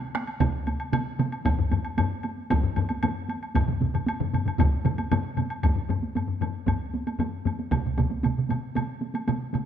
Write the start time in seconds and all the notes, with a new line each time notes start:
0.02 taiko high
0.15 taiko rim, taiko high, high woodblock
0.27 taiko high, high woodblock
0.41 taiko, taiko mid, taiko high, high woodblock
0.54 taiko high
0.67 taiko high, high woodblock
0.80 high woodblock
0.93 taiko mid, taiko high, high woodblock
1.07 taiko high
1.19 taiko mid, taiko high, high woodblock
1.32 taiko high, high woodblock
1.45 taiko, taiko low-mid, taiko high, high woodblock
1.59 taiko low-mid, taiko high
1.71 taiko low-mid, taiko high, high woodblock
1.85 taiko high, high woodblock
1.98 taiko low-mid, taiko high, high woodblock
2.11 taiko high
2.23 taiko high, high woodblock
2.38 taiko high
2.50 taiko, taiko low-mid, taiko high, high woodblock
2.63 taiko low-mid, taiko high
2.76 taiko low-mid, taiko high, high woodblock
2.89 taiko high, high woodblock
3.03 taiko low-mid, taiko high, high woodblock
3.16 taiko high
3.29 taiko high, high woodblock
3.42 taiko high, high woodblock
3.55 taiko, taiko low-mid, taiko mid, taiko high, high woodblock
3.68 taiko low-mid, taiko mid, taiko high
3.81 taiko low-mid, taiko mid, taiko high
3.94 taiko low-mid, taiko mid, high woodblock
4.06 taiko high, high woodblock
4.20 taiko low-mid, taiko mid, taiko high
4.33 taiko low-mid, taiko mid, taiko high, high woodblock
4.45 taiko low-mid, taiko mid, taiko high, high woodblock
4.59 taiko, taiko low-mid, taiko mid, taiko high, high woodblock
4.72 taiko high
4.85 taiko low-mid, taiko mid, taiko high, high woodblock
4.98 taiko high, high woodblock
5.11 taiko low-mid, taiko mid, taiko high, high woodblock
5.25 taiko high
5.37 taiko low-mid, taiko mid, taiko high, high woodblock
5.50 taiko high, high woodblock
5.63 taiko, taiko low-mid, taiko high, high woodblock
5.76 taiko low-mid
5.89 taiko low-mid, taiko high, high woodblock
6.02 taiko high
6.15 taiko low-mid, taiko high, high woodblock
6.28 taiko low-mid
6.41 taiko low-mid, taiko high, high woodblock
6.67 taiko, taiko low-mid, taiko high, high woodblock
6.94 taiko high
7.07 taiko high, high woodblock
7.19 taiko low-mid, taiko high, high woodblock
7.45 taiko low-mid, taiko high, high woodblock
7.59 taiko high
7.71 taiko, taiko mid, taiko high, high woodblock
7.86 taiko mid
7.98 taiko, taiko mid, taiko high, high woodblock
8.10 taiko high
8.23 taiko mid, taiko high, high woodblock
8.38 taiko mid
8.49 taiko mid, taiko high, high woodblock
8.75 taiko mid, taiko high, high woodblock
9.01 taiko high
9.14 taiko high, high woodblock
9.28 taiko mid, taiko high, high woodblock
9.53 taiko mid, taiko high, high woodblock